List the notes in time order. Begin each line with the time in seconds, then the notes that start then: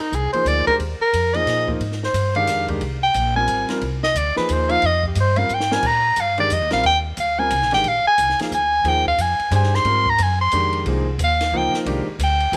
0.00 D#4
0.12 C2 G#4, hi-hat pedal
0.33 F3 A#3 D#4 G#4 C5, muted upright bass stroke, ride
0.45 D2 D5, hi-hat pedal, ride
0.67 G#3 D4 G4 A#4 C5, muted upright bass stroke, kick, ride
0.79 D#2, ride
1.00 A#4, muted upright bass stroke
1.13 F2, hi-hat pedal, ride
1.34 F3 A#3 D#4 G#4 D#5, ride
1.46 A#2, snare, ride
1.68 F3 A#3 D#4 F4, kick
1.80 G#2, ride
1.92 snare
2.03 C5, snare
2.13 G2, hi-hat pedal, ride
2.35 D#3 G#3 D4 G4 F5, ride
2.47 F2, snare, hi-hat pedal, ride
2.68 D#3 G#3 D4 G4, kick, ride
2.80 C2, ride
3.03 G5
3.14 A#1, hi-hat pedal, ride
3.35 G3 C4 F4 A#4 G#5
3.48 G#1, hi-hat pedal, ride
3.69 G3 C4 F4 A#4, muted upright bass stroke, snare, ride
3.81 C2, ride
4.03 D#5, snare
4.15 D2 D5, hi-hat pedal, ride
4.36 F3 A#3 D#4 G#4 B4, muted upright bass stroke, snare
4.49 D#2 C5, hi-hat pedal, ride
4.69 F3 A#3 D#4 F4 F5, ride
4.82 F2, ride
4.86 D#5
5.03 G4, kick
5.15 G2, hi-hat pedal, ride
5.20 C5
5.36 G3 C4 F4 A#4 F5, ride
5.49 G#2, hi-hat pedal
5.54 G5
5.60 snare
5.71 G3 C4 F4 A#4 G#5, snare
5.82 A#2, kick, crash
5.86 A#5
6.16 G2, hi-hat pedal, ride
6.20 F5
6.38 D#3 G#3 D4 G4 D5, ride
6.50 F2 D#5, hi-hat pedal, ride
6.62 D#2
6.71 A#1 G3 C4 F4 A#4 F5, snare, ride
6.83 D#2 G5, ride
7.17 D2 F5, hi-hat pedal, ride
7.38 G3 C4 F4 A#4 G#5
7.50 C2, hi-hat pedal, ride
7.62 A#1, snare
7.71 G#1 D#3 G#3 D4 G4 G5, snare, ride
7.84 A#1, ride
7.88 F5
8.04 G#5, muted upright bass stroke
8.18 C2, hi-hat pedal, ride
8.29 snare
8.39 F3 A#3 D#4 G#4 F5, muted upright bass stroke, snare, ride
8.51 D2 G#5, hi-hat pedal
8.84 D#2 F3 A#3 D#4 G#4, ride
8.88 G5
9.06 F5, kick
9.18 F2 G#5, hi-hat pedal, ride
9.39 muted upright bass stroke, ride
9.51 G2 D4 G4 G#4 C5, hi-hat pedal, ride
9.56 G#5
9.63 snare
9.74 C6, snare
9.84 G#2 G3 C4 F4 A#4, ride
10.06 A#5, kick
10.18 F#2, hi-hat pedal, ride
10.23 G#5
10.41 C6
10.52 F2 D#3 G#3 D4 G4, hi-hat pedal, ride
10.73 ride
10.85 C2 F3 A#3 D#4 G#4, ride
11.18 D#2, hi-hat pedal, ride
11.24 F5
11.41 snare, ride
11.52 C#2 F3 A#3 D#4 F4
11.57 G5
11.73 muted upright bass stroke, snare
11.85 C2 D#3 G#3 D4 G4, ride
12.07 muted upright bass stroke
12.19 D2, hi-hat pedal, ride
12.23 G5
12.40 ride
12.52 D#2 F#3 B3 E4 A4, hi-hat pedal, ride